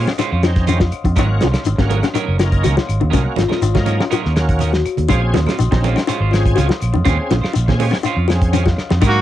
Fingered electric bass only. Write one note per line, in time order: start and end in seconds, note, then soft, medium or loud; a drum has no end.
0.32 0.89 F2 medium
0.93 muted fingered electric bass stroke soft
1.04 1.16 F2 medium
1.16 1.40 G#1 loud
1.43 1.54 C2 medium
1.55 muted fingered electric bass stroke soft
1.67 1.78 G#1 medium
1.79 2.02 G#1 medium
2.28 2.62 F#1 medium
2.65 2.77 C#2 medium
2.89 3.01 G#1 medium
3.03 3.13 D#2 medium
3.14 3.26 C2 medium
3.38 3.50 G#1 medium
3.62 3.74 G#1 medium
3.75 3.98 G#2 medium
4.26 4.82 D#2 medium
4.98 5.09 D#2 medium
5.10 5.32 A#1 loud
5.34 5.45 D#2 loud
5.47 muted fingered electric bass stroke soft
5.59 5.71 A#1 medium
5.72 5.94 A#1 medium
6.20 6.54 G#1 medium
6.57 6.69 C#2 medium
6.82 6.93 A#1 medium
6.95 7.05 F2 medium
7.06 7.18 D#2 medium
7.31 7.42 A#1 medium
7.56 7.67 A#1 medium
7.68 7.90 A#2 medium
8.17 8.73 F2 medium
8.78 muted fingered electric bass stroke soft
8.91 9.02 F2 medium
9.02 9.21 G#2 loud